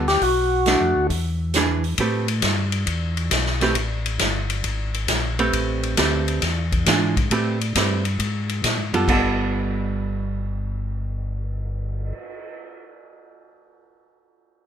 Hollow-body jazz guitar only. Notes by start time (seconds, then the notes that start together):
0.67 A3 D4
1.56 E3 D4 G#4 B4
2.00 A3 C4 G4 B4
3.62 A3 C4 G4 B4
5.39 A3 C4 G4 B4
5.97 A3 C4 G4 B4
6.88 E3 G#3 D4 F4
7.31 A3 C4 G4 B4
7.76 A3 C4 G4 B4
8.94 G3 B3 F4 A4
9.08 G3 B3 F4 A4